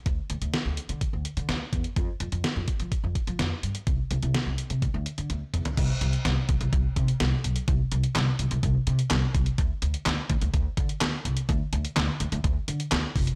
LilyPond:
<<
  \new Staff \with { instrumentName = "Upright bass" } { \clef bass \time 4/4 \key d \dorian \tempo 4 = 126 d,16 r16 d,16 d,16 r16 d,16 r16 d16 r16 d,16 r16 d16 d,16 r16 e,16 r16 | f,16 r16 f,16 f,16 r16 f,16 r16 f16 r16 f,16 r16 f16 f,16 r16 g,16 r16 | c,16 r16 c,16 c,16 r16 c,16 r16 c16 d,16 d,16 r16 d16 d,16 r16 e,16 r16 | c,16 r16 c,16 r16 c,16 r16 c,16 c,16 c,16 r16 c16 r16 c,16 r16 b,,16 r16 |
c,16 r16 c,16 r16 c,16 r16 c,16 c,16 c,16 r16 c16 r16 c,16 r16 c,16 r16 | d,16 r16 d,16 r16 d,16 r16 d,16 d,16 d,16 r16 d16 r16 d,16 r16 c,16 r16 | d,16 r16 d,16 r16 d,16 r16 d,16 d,16 d,16 r16 d16 r16 d,16 r16 f,,16 r16 | }
  \new DrumStaff \with { instrumentName = "Drums" } \drummode { \time 4/4 <hh bd>8 hh16 hh16 <hh sn>8 hh16 hh16 <hh bd>8 hh16 hh16 <hh sn>8 <hh bd>16 hh16 | <hh bd>8 hh16 hh16 <hh sn>8 <hh bd>16 hh16 <hh bd>8 <hh bd>16 hh16 <hh sn>8 hh16 hh16 | <hh bd>8 hh16 hh16 <hh sn>8 hh16 hh16 <hh bd>8 hh16 hh16 <hh tommh>8 <hh toml>16 <hh tomfh>16 | <cymc hh bd>8 hh16 hh16 <hh sn>8 <hh bd>16 hh16 <hh bd>8 <hh bd>16 hh16 <hh sn>8 hh16 hh16 |
<hh bd>8 hh16 hh16 <hc hh sn>8 hh16 hh16 <hh bd>8 hh16 hh16 <hc hh sn>8 <hh bd>16 hh16 | <hh bd>8 hh16 hh16 <hc hh sn>8 <hh bd>16 hh16 <hh bd>8 <hh bd>16 hh16 <hc hh sn>8 hh16 hh16 | <hh bd>8 hh16 hh16 <hc hh sn>8 hh16 hh16 <hh bd>8 hh16 hh16 <hc hh sn>8 <hho bd>16 hh16 | }
>>